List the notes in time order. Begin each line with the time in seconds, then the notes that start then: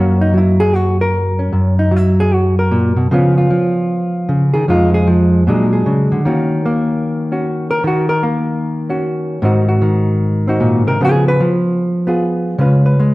Already playing: F#2 F#3 A#3 C#4 F#4
0.21 D#4
0.34 F#3 E4
0.60 G#4
0.76 F#4
1.01 A#4
1.39 C#4
1.53 F#2
1.79 D#4
1.91 F#3
1.96 E4
2.20 G#4
2.34 F#4
2.59 A#4
2.71 A#2
2.96 B2
3.11 C#3 F3 B3 C#4 F4
3.38 F4
3.50 F3
4.29 C#3
4.54 D#3 G#4
4.68 F2 F3 G#3 D#4 F4
4.94 G#4
5.07 F3
5.47 A#2 F#3 G#3 D4 G#4
5.73 G#4
5.86 C#3
6.12 D3
6.25 D#3 A#3 C#4 F#4
6.66 A#3
7.32 C#4 F#4
7.71 A#4
7.84 D#3 F#4
8.09 A#4
8.23 A#3
8.90 C#4 F#4
9.42 G#2 D#3 C4 D#4 F#4
9.69 F#4
9.82 D#3
10.48 C4 D#4 F#4
10.60 A#2
10.87 C3 A#4
11.01 C#3 F3 B3 F4 G#4
11.28 B4
11.40 F3
12.07 B3 F4 G#4
12.58 C#3 G#3 C#4 F4 B4
12.86 B4
13.00 G#3